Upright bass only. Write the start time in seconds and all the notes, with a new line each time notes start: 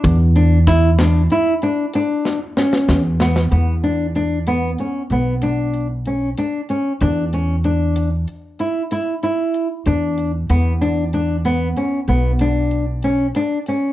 0.04 E2
2.88 E2
3.52 E2
5.10 B1
7.01 E2
9.86 E2
10.50 E2
12.08 B1